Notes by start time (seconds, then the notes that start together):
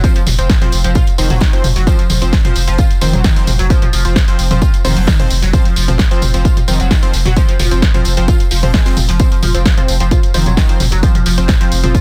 0.04 F3 C4 C5, kick, closed hi-hat, tambourine
0.16 F3, closed hi-hat, tambourine
0.27 F1, snare, open hi-hat, mid tom, tambourine
0.39 F1 F3 C4 C5, closed hi-hat, tambourine
0.49 kick, snare, closed hi-hat, tambourine
0.61 F3 C4 C5, snare, closed hi-hat, mid tom, tambourine
0.72 F1, open hi-hat, tambourine
0.84 F1 F3 C4 C5, closed hi-hat, tambourine
0.95 F4, kick, closed hi-hat, mid tom, tambourine
1.07 closed hi-hat, tambourine
1.18 F1 D#3 F3 C4 C5, open hi-hat, tambourine
1.30 F1 F#3, closed hi-hat, mid tom, tambourine
1.41 D#3, kick, snare, closed hi-hat, tambourine
1.53 F3 C4 C5, closed hi-hat, tambourine
1.64 F1, open hi-hat, mid tom, tambourine
1.76 F1 F#3, snare, closed hi-hat, tambourine
1.87 F3 C4 C5, kick, closed hi-hat, tambourine
1.99 F3, closed hi-hat, tambourine
2.09 F1 F3, open hi-hat, mid tom, tambourine
2.22 F1 F3 C4 C5, closed hi-hat, tambourine
2.33 kick, snare, closed hi-hat, tambourine
2.45 F3 C4 C5, closed hi-hat, mid tom, tambourine
2.56 F1, open hi-hat, tambourine
2.67 F1 F3 C4 C5, closed hi-hat, tambourine
2.78 F4, kick, closed hi-hat, mid tom, tambourine
2.90 closed hi-hat, tambourine
3.01 F1 D#3 F3 C4 C5, open hi-hat, tambourine
3.13 F1 F#3, closed hi-hat, mid tom, tambourine
3.24 D#3, kick, snare, closed hi-hat, tambourine
3.36 F3 C4 C5, closed hi-hat, tambourine
3.47 F1, snare, open hi-hat, mid tom, tambourine
3.59 F1 F#3, snare, closed hi-hat, tambourine
3.70 F3 C4 C5, kick, closed hi-hat, tambourine
3.82 F3, closed hi-hat, mid tom, tambourine
3.93 F1 F3, snare, open hi-hat, tambourine
4.05 F1 F3 C4 C5, closed hi-hat, tambourine
4.16 kick, snare, closed hi-hat, mid tom, tambourine
4.28 F3 C4 C5, snare, closed hi-hat, tambourine
4.39 F1, open hi-hat, tambourine
4.51 F1 F3 C4 C5, closed hi-hat, mid tom, tambourine
4.62 F4, kick, closed hi-hat, tambourine
4.74 closed hi-hat, tambourine
4.85 F1 D#3 F3 C4 C5, open hi-hat, mid tom, tambourine
4.96 F1 F#3, closed hi-hat, tambourine
5.07 D#3, kick, snare, closed hi-hat, tambourine
5.20 F3 C4 C5, closed hi-hat, mid tom, tambourine
5.30 F1, open hi-hat, tambourine
5.42 F1 F#3, snare, closed hi-hat, tambourine
5.53 F3 C4 C5, kick, closed hi-hat, mid tom, tambourine
5.65 F3, closed hi-hat, tambourine
5.76 F1 F3, open hi-hat, tambourine
5.88 F1 F3 C4 C5, closed hi-hat, mid tom, tambourine
5.98 kick, snare, closed hi-hat, tambourine
6.11 F3 C4 C5, closed hi-hat, tambourine
6.22 F1, open hi-hat, mid tom, tambourine
6.34 F1 F3 C4 C5, closed hi-hat, tambourine
6.45 F4, kick, closed hi-hat, tambourine
6.57 closed hi-hat, mid tom, tambourine
6.68 F1 D#3 F3 C4 C5, open hi-hat, tambourine
6.80 F1 F#3, closed hi-hat, tambourine
6.91 D#3, kick, snare, closed hi-hat, mid tom, tambourine
7.03 F3 C4 C5, closed hi-hat, tambourine
7.13 F1, snare, open hi-hat, tambourine
7.25 F1 F#3, snare, closed hi-hat, mid tom, tambourine
7.36 F3 C4 C5, kick, closed hi-hat, tambourine
7.48 F3, closed hi-hat, tambourine
7.59 F1 F3, snare, open hi-hat, mid tom, tambourine
7.71 F1 F3 C4 C5, closed hi-hat, tambourine
7.82 kick, snare, closed hi-hat, tambourine
7.94 F3 C4 C5, closed hi-hat, mid tom, tambourine
8.05 F1, open hi-hat, tambourine
8.17 F1 F3 C4 C5, closed hi-hat
8.28 F4, kick, closed hi-hat, mid tom, tambourine
8.40 closed hi-hat, tambourine
8.51 F1 F3, open hi-hat, tambourine
8.63 F1 F3 C4 C5, closed hi-hat, mid tom, tambourine
8.74 G#3, kick, snare, closed hi-hat, tambourine
8.86 F3 C4 C5, snare, closed hi-hat, tambourine
8.97 F1, open hi-hat, mid tom, tambourine
9.08 F1 F3, snare, closed hi-hat, tambourine
9.19 F3 C4 C5, kick, closed hi-hat, tambourine
9.32 F3, closed hi-hat, tambourine
9.42 F1 F3, open hi-hat, mid tom, tambourine
9.55 F1 F3 C4 C5, closed hi-hat, tambourine
9.65 kick, snare, closed hi-hat, tambourine
9.77 F3 C4 C5, closed hi-hat, mid tom, tambourine
9.88 F1, open hi-hat, tambourine
10.00 F1 F3 C4 C5, closed hi-hat, tambourine
10.11 F4, kick, closed hi-hat, mid tom, tambourine
10.23 closed hi-hat, tambourine
10.34 F1 D#3 F3 C4 C5, open hi-hat, tambourine
10.46 F1 F#3, closed hi-hat, mid tom, tambourine
10.57 D#3, kick, snare, closed hi-hat, tambourine
10.69 F3 C4 C5, closed hi-hat, tambourine
10.80 F1, snare, open hi-hat, mid tom, tambourine
10.91 F1 F#3, snare, closed hi-hat, tambourine
11.03 F3 C4 C5, kick, closed hi-hat, tambourine
11.15 F3, closed hi-hat, mid tom, tambourine
11.26 F1 F3, snare, open hi-hat, tambourine
11.38 F1 F3 C4 C5, closed hi-hat, tambourine
11.48 kick, snare, closed hi-hat, mid tom, tambourine
11.60 F3 C4 C5, snare, closed hi-hat, tambourine
11.72 F1, open hi-hat, tambourine
11.83 F1 F3 C4 C5, closed hi-hat, mid tom, tambourine
11.95 F4, kick, closed hi-hat, tambourine